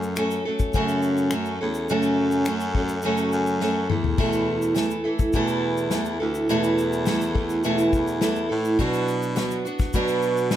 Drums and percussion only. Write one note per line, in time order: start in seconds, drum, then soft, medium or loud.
0.03 shaker soft
0.16 finger snap loud
0.16 shaker medium
0.31 shaker medium
0.59 kick medium
0.59 shaker medium
0.73 kick medium
0.73 shaker medium
0.88 shaker soft
1.02 shaker soft
1.17 shaker soft
1.31 finger snap loud
1.31 shaker medium
1.45 shaker soft
1.74 shaker medium
1.89 shaker medium
2.03 shaker medium
2.31 shaker soft
2.45 finger snap loud
2.45 shaker medium
2.60 shaker medium
2.75 kick medium
2.88 shaker medium
3.02 shaker medium
3.17 shaker medium
3.32 shaker soft
3.47 shaker soft
3.61 snare medium
3.90 mid tom medium
4.04 floor tom medium
4.18 kick loud
4.18 crash medium
4.33 shaker medium
4.62 shaker medium
4.76 snare loud
4.76 shaker medium
4.91 shaker soft
5.19 kick loud
5.19 shaker medium
5.33 kick medium
5.33 shaker medium
5.48 shaker soft
5.77 shaker soft
5.91 snare loud
5.91 shaker medium
6.05 shaker soft
6.35 shaker medium
6.49 shaker medium
6.64 shaker medium
6.78 shaker medium
6.93 shaker soft
7.06 snare loud
7.06 shaker medium
7.21 shaker medium
7.35 kick medium
7.50 shaker medium
7.64 shaker medium
7.78 shaker medium
7.93 kick medium
7.93 shaker soft
8.08 shaker soft
8.21 snare loud
8.21 shaker medium
8.36 shaker soft
8.65 shaker soft
8.79 kick medium
8.79 shaker medium
8.93 shaker medium
9.08 shaker soft
9.22 shaker medium
9.36 snare loud
9.36 shaker medium
9.51 shaker medium
9.66 shaker soft
9.79 kick loud
9.79 snare soft
9.79 shaker medium
9.93 kick medium
9.93 shaker medium
10.08 shaker soft
10.22 shaker soft
10.37 shaker soft
10.51 snare loud
10.51 shaker medium